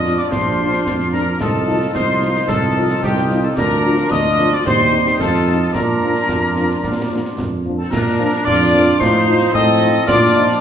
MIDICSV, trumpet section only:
0, 0, Header, 1, 2, 480
1, 0, Start_track
1, 0, Key_signature, -2, "major"
1, 0, Tempo, 542005
1, 283, Time_signature, 2, 2, 24, 8
1, 9394, End_track
2, 0, Start_track
2, 0, Title_t, "Trumpet section"
2, 0, Program_c, 0, 61
2, 0, Note_on_c, 0, 75, 83
2, 133, Note_off_c, 0, 75, 0
2, 162, Note_on_c, 0, 74, 72
2, 263, Note_on_c, 0, 72, 81
2, 282, Note_off_c, 0, 74, 0
2, 843, Note_off_c, 0, 72, 0
2, 993, Note_on_c, 0, 70, 71
2, 1221, Note_off_c, 0, 70, 0
2, 1243, Note_on_c, 0, 69, 76
2, 1690, Note_off_c, 0, 69, 0
2, 1718, Note_on_c, 0, 72, 84
2, 2167, Note_off_c, 0, 72, 0
2, 2193, Note_on_c, 0, 69, 83
2, 2645, Note_off_c, 0, 69, 0
2, 2685, Note_on_c, 0, 67, 87
2, 3020, Note_off_c, 0, 67, 0
2, 3050, Note_on_c, 0, 69, 75
2, 3165, Note_on_c, 0, 70, 94
2, 3168, Note_off_c, 0, 69, 0
2, 3612, Note_off_c, 0, 70, 0
2, 3640, Note_on_c, 0, 75, 110
2, 4003, Note_off_c, 0, 75, 0
2, 4010, Note_on_c, 0, 74, 96
2, 4128, Note_off_c, 0, 74, 0
2, 4128, Note_on_c, 0, 72, 96
2, 4574, Note_off_c, 0, 72, 0
2, 4605, Note_on_c, 0, 69, 86
2, 5053, Note_off_c, 0, 69, 0
2, 5079, Note_on_c, 0, 70, 78
2, 6487, Note_off_c, 0, 70, 0
2, 6898, Note_on_c, 0, 69, 71
2, 7004, Note_off_c, 0, 69, 0
2, 7015, Note_on_c, 0, 70, 82
2, 7482, Note_on_c, 0, 74, 104
2, 7491, Note_off_c, 0, 70, 0
2, 7930, Note_off_c, 0, 74, 0
2, 7968, Note_on_c, 0, 72, 93
2, 8443, Note_on_c, 0, 75, 104
2, 8446, Note_off_c, 0, 72, 0
2, 8890, Note_off_c, 0, 75, 0
2, 8917, Note_on_c, 0, 74, 100
2, 9366, Note_off_c, 0, 74, 0
2, 9394, End_track
0, 0, End_of_file